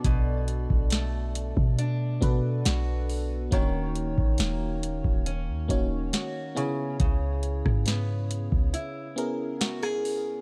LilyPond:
<<
  \new Staff \with { instrumentName = "FM electric piano" } { \time 4/4 \key des \major \tempo 4 = 69 <b d' fis' a' d''>4 r4. <b d' fis' a' b'>4~ <b d' fis' a' b'>16 r16 | <bes des' ees' ges' des''>4. r4 <bes des' ees' ges' des''>4 <ces' des' fes' aes' des''>8~ | <ces' des' fes' aes' des''>4 r4. <ces' des' fes' aes' bes'>4~ <ces' des' fes' aes' bes'>16 r16 | }
  \new Staff \with { instrumentName = "Steel-string acoustic guitar" } { \time 4/4 \key des \major b,4 a4 d'4 fis'4 | ees4 bes4 des'4 ges'8 des8 | des4 ces'4 fes'4 ges'16 aes'8. | }
  \new Staff \with { instrumentName = "808-style bass" } { \clef bass \time 4/4 \key des \major b,,8. b,,4 b,8. b,8 b,,4 | ees,,8. bes,,16 ees,,8. ees,,8 ees,16 ees,,8 r4 | des,8. aes,4 des,16 r2 | }
  \new DrumStaff \with { instrumentName = "Drums" } \drummode { \time 4/4 <hh bd>8 hh16 bd16 <hh sn>8 hh16 bd16 hh8 <hh bd>8 <hh sn>8 hho8 | <hh bd>8 hh16 bd16 <hh sn>8 hh16 bd16 hh8 <hh bd>8 <hh sn>8 hh8 | <hh bd>8 hh16 <bd ss>16 <hh sn>8 hh16 bd16 hh8 hh8 <hh sn>16 ss16 hho8 | }
>>